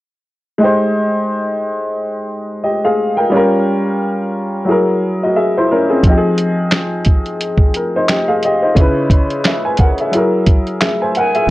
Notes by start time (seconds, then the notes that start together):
0.58 G#3 D#4
0.62 G4 C5
2.64 G4 D#5
2.85 G#4 F5
3.17 A#4 G5
3.30 G3 C#4 F4
3.36 A#4
4.65 F#3 E4 G#4
4.71 A#4
5.23 F#4 D#5
5.36 G#4 E5
5.57 E4 C5
5.71 C#4 A#4
5.90 C4 G#4
6.03 F3 C4, kick, closed hi-hat
6.09 D#4 G4
6.17 G#4
6.38 closed hi-hat
6.71 snare, clap, closed hi-hat
7.05 kick, closed hi-hat
7.26 closed hi-hat
7.41 closed hi-hat
7.58 kick
7.74 A#4, closed hi-hat
7.96 D#4 C5
8.08 G4 D#5, snare, clap, closed hi-hat
8.28 G#4 F5
8.43 G4 D#5, closed hi-hat
8.62 D#4 C5
8.75 C#3 C#4 E4, kick, closed hi-hat
8.81 B4
9.10 kick, closed hi-hat
9.30 closed hi-hat
9.44 G#4 E5, snare, clap, closed hi-hat
9.65 B4 G#5
9.77 A#4 F#5, kick, closed hi-hat
9.98 G#4 E5, closed hi-hat
10.11 F#3 E4 G#4, closed hi-hat
10.17 A#4
10.46 kick, closed hi-hat
10.67 closed hi-hat
10.81 G#4 E5, snare, clap, closed hi-hat
11.02 C5 G#5
11.15 A#4 F#5 G#5, closed hi-hat
11.35 G#4 E5, closed hi-hat